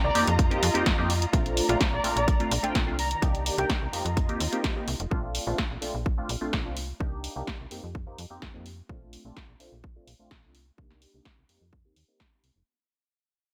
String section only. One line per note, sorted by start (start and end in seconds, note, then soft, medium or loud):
0.00 0.14 D#3 medium
0.00 0.13 D5 medium
0.00 1.30 A#5 loud
0.16 1.32 F4 medium
0.16 1.32 D#5 medium
1.34 2.97 A3 medium
1.34 2.97 D5 medium
1.34 2.97 A#5 medium
2.99 3.92 D#3 medium
2.99 3.92 D5 medium
2.99 5.09 A#5 medium
3.93 5.10 F4 medium
3.93 5.10 D#5 medium